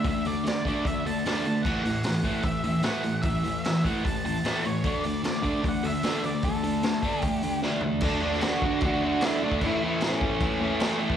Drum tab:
CC |----------------|x---------------|----------------|----------------|
HH |o-o-o-o-o-o-o-o-|--o-o-o-o-o-o-o-|o-o-o-o-o-o-o-o-|o-o-o-o-o-o-o-o-|
SD |----o-------o---|----o-------o---|----o-------o---|----o-------o---|
FT |----------------|----------------|----------------|----------------|
BD |o-----o-o-------|o-----o-o-------|o-----o-o-------|o-----o-o-------|

CC |----------------|x---x---x---x---|x---x---x---x---|
HH |o-o-o-o-o-o-----|----------------|----------------|
SD |----o-------o---|---oo-------o---|----o-------o---|
FT |--------------o-|----------------|----------------|
BD |o-----o-o-------|o-----o-o------o|o-----o-o------o|